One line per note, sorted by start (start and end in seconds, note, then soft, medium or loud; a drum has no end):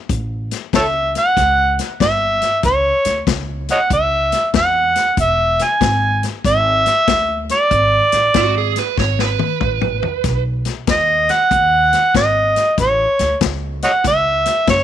0.09 0.51 A1 medium
0.09 kick medium
0.09 closed hi-hat medium
0.51 snare soft
0.51 closed hi-hat medium
0.73 1.14 C#2 medium
0.73 0.85 A4 medium
0.73 0.82 C#5 medium
0.73 1.13 E5 medium
0.73 kick medium
0.73 snare loud
0.73 closed hi-hat medium
1.15 1.76 F#5 loud
1.15 snare soft
1.15 closed hi-hat medium
1.37 1.78 C#2 medium
1.37 kick medium
1.37 snare soft
1.37 closed hi-hat medium
1.79 snare soft
1.79 closed hi-hat medium
2.00 2.41 G1 medium
2.00 2.61 E5 medium
2.00 kick medium
2.00 snare loud
2.00 closed hi-hat medium
2.42 snare soft
2.42 closed hi-hat medium
2.63 2.90 C#2 medium
2.63 3.25 C#5 medium
2.63 kick medium
2.63 snare soft
2.63 closed hi-hat medium
3.05 3.20 D2 medium
3.05 snare soft
3.05 closed hi-hat medium
3.27 3.68 C#2 medium
3.27 kick medium
3.27 snare loud
3.27 closed hi-hat medium
3.68 3.78 C#5 medium
3.68 3.79 D#5 medium
3.68 3.91 F#5 medium
3.68 snare soft
3.68 closed hi-hat medium
3.90 4.32 C#2 medium
3.90 4.52 E5 medium
3.90 kick medium
3.90 closed hi-hat medium
4.32 snare soft
4.32 closed hi-hat medium
4.54 4.95 E2 medium
4.54 5.15 F#5 medium
4.54 kick medium
4.54 snare loud
4.54 closed hi-hat medium
4.95 snare soft
4.95 closed hi-hat medium
5.17 5.58 E1 medium
5.17 5.65 E5 medium
5.17 kick medium
5.17 closed hi-hat medium
5.59 snare soft
5.59 closed hi-hat medium
5.64 6.25 G#5 medium
5.81 6.22 G#1 medium
5.81 kick medium
5.81 snare loud
5.81 closed hi-hat medium
6.23 snare soft
6.23 closed hi-hat medium
6.44 6.86 G#1 medium
6.44 7.47 E5 loud
6.44 kick medium
6.44 snare soft
6.44 closed hi-hat medium
6.86 snare soft
6.86 closed hi-hat medium
7.08 7.49 D2 medium
7.08 kick medium
7.08 snare medium
7.08 closed hi-hat medium
7.49 8.74 D5 loud
7.49 snare soft
7.49 closed hi-hat medium
7.71 7.98 G#1 medium
7.71 kick medium
7.71 closed hi-hat medium
8.12 8.27 A1 medium
8.12 snare soft
8.12 closed hi-hat medium
8.34 8.75 G#1 medium
8.34 8.57 F#4 medium
8.34 kick medium
8.34 snare loud
8.34 closed hi-hat medium
8.58 8.78 G#4 medium
8.76 8.99 B4 medium
8.76 snare soft
8.76 closed hi-hat medium
8.97 9.39 G#1 medium
8.97 9.20 C#5 medium
8.97 kick medium
8.97 snare medium
9.19 10.43 B4 medium
9.19 snare medium
9.39 high tom medium
9.60 10.02 A1 medium
9.60 kick medium
9.60 mid tom medium
9.81 mid tom medium
10.03 floor tom medium
10.24 10.65 B1 medium
10.24 kick medium
10.24 snare soft
10.24 closed hi-hat medium
10.65 snare soft
10.65 closed hi-hat medium
10.87 11.29 D#2 medium
10.87 11.33 D#5 medium
10.87 kick medium
10.87 snare loud
10.87 closed hi-hat medium
11.29 12.16 F#5 loud
11.29 snare soft
11.29 closed hi-hat medium
11.51 11.92 D#2 medium
11.51 kick medium
11.51 closed hi-hat medium
11.93 snare soft
11.93 closed hi-hat medium
12.14 12.55 G#1 medium
12.14 12.75 D#5 medium
12.14 kick medium
12.14 snare loud
12.14 closed hi-hat medium
12.56 snare soft
12.56 closed hi-hat medium
12.78 13.05 A1 medium
12.78 13.39 C#5 medium
12.78 kick medium
12.78 snare soft
12.78 closed hi-hat medium
13.19 13.34 D2 medium
13.19 snare soft
13.19 closed hi-hat medium
13.41 13.82 C#2 medium
13.41 kick medium
13.41 snare loud
13.41 closed hi-hat medium
13.82 13.91 C#5 medium
13.82 13.91 D#5 medium
13.82 14.04 F#5 loud
13.82 snare soft
13.82 closed hi-hat medium
14.04 14.45 C#2 medium
14.04 14.65 E5 loud
14.04 kick medium
14.04 snare soft
14.04 closed hi-hat medium
14.45 snare soft
14.45 closed hi-hat medium
14.67 14.84 F#1 medium
14.67 14.84 C#5 medium
14.67 kick medium
14.67 snare loud
14.67 closed hi-hat medium